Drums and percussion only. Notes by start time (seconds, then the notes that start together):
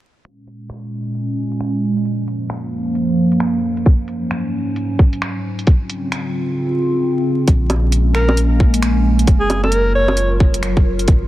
0.25 closed hi-hat
0.47 closed hi-hat
0.70 finger snap, closed hi-hat
1.15 closed hi-hat
1.52 closed hi-hat
1.61 finger snap, closed hi-hat
1.97 closed hi-hat
2.05 closed hi-hat
2.28 closed hi-hat
2.50 finger snap, closed hi-hat
2.95 closed hi-hat
3.32 closed hi-hat
3.40 finger snap, closed hi-hat
3.77 closed hi-hat
3.86 kick, closed hi-hat
4.08 closed hi-hat
4.31 finger snap, closed hi-hat
4.76 closed hi-hat
4.99 kick
5.13 closed hi-hat
5.22 finger snap, closed hi-hat
5.59 closed hi-hat
5.67 kick, closed hi-hat
5.89 closed hi-hat
6.12 finger snap, closed hi-hat
7.47 kick, closed hi-hat
7.70 closed hi-hat, low bongo
7.92 closed hi-hat
8.15 finger snap
8.29 low bongo
8.37 closed hi-hat
8.60 kick
8.74 closed hi-hat
8.83 finger snap, closed hi-hat
9.19 closed hi-hat
9.27 kick, closed hi-hat
9.50 closed hi-hat, low bongo
9.64 low bongo
9.72 closed hi-hat
10.08 low bongo
10.17 closed hi-hat
10.40 kick
10.54 closed hi-hat
10.63 finger snap, closed hi-hat
10.77 kick
10.99 closed hi-hat
11.08 kick, closed hi-hat